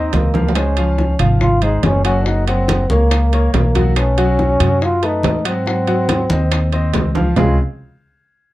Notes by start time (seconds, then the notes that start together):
Already playing: D#2 C4 D#4 C5 D#5
0.13 C#2 A#3, high conga, high timbale, low timbale
0.34 F3 F4 F5, high conga, high timbale
0.48 low timbale
0.55 G#3 C#4 G#4 C5, high bongo, high conga, high timbale
0.77 F3 F4 F5, high conga, high timbale
0.98 high bongo, high conga, low timbale
1.19 G#1 F3 F4 F5, high bongo, high conga, low conga, high timbale
1.41 F4, high bongo, high conga, low conga
1.62 G#3 D#4 G#4 C5, high bongo, high conga, high timbale
1.83 F#1 C#4, high bongo, low bongo, high conga, high timbale, low timbale
2.05 F#3 C#4 F#4 F#5, high bongo, high conga, high timbale
2.22 D4
2.26 F#3 D#4 F#4 F#5, high bongo, high conga
2.48 F#3 C4 F#4 F#5, high conga, high timbale
2.68 high bongo, high conga, high timbale, low timbale
2.89 C#2 A#3 A#4 C#5, high bongo, high conga
3.11 high bongo, high conga, high timbale
3.32 A#3 A#4 C#5, high bongo, high conga, high timbale
3.54 B1 A#3, high bongo, low bongo, high conga, high timbale, low timbale
3.75 F#3 F#4 F#5, high bongo, high conga, high timbale
3.96 A3 C#4 A4 B4, high bongo, high conga, high timbale
4.18 F#3 F#4 F#5, high conga, high timbale
4.39 high bongo, high conga, low timbale
4.60 F#2 F#3 F#4 F#5, high bongo, high conga, low conga, high timbale
4.81 F4, high bongo, high conga
5.03 A3 D#4 A4 B4, high bongo, high conga, high timbale
5.23 G#2, high bongo, low bongo, high conga, high timbale, low timbale
5.45 F#3 C4 F#4 F#5, high bongo, high conga, high timbale
5.66 F#3 F#4 F#5, high bongo, high conga
5.87 F#3 F#4 F#5, high conga, high timbale
6.09 high bongo, high conga, high timbale, low timbale
6.30 D#2 C4 C5 D#5, high bongo, high conga
6.51 high bongo, high conga, high timbale
6.72 C4 C5 D#5, high bongo, high conga, high timbale
6.94 C#2, high bongo, low bongo, high conga, high timbale, low timbale
7.15 F3 F4 F5, high bongo, high conga, high timbale
7.36 C#2 C#3 G#3 C4 C#4 F4 G#4, low bongo, low conga, low timbale